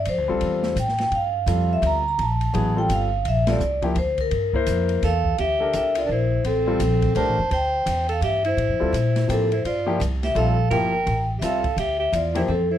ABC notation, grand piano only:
X:1
M:3/4
L:1/8
Q:"Swing" 1/4=169
K:Gdor
V:1 name="Grand piano"
z [G,CFA]3 z2 | z2 [G,CFA]3 z | z2 [^F,=B,E^G] [=G,C=FA]2 z | z [G,CFA] z [F,B,EG] z2 |
z [B,EBc]3 z2 | z [DGAB]3 z2 | z [G,CFA] z2 [A,DGB] z | z6 |
z [G,CFA] z2 [F,B,EG] z | z [F,B,EG] z2 [G,CFA] z | [F,B,EG] z3 [G,CFA] z | z3 [F,B,EG] z2 |]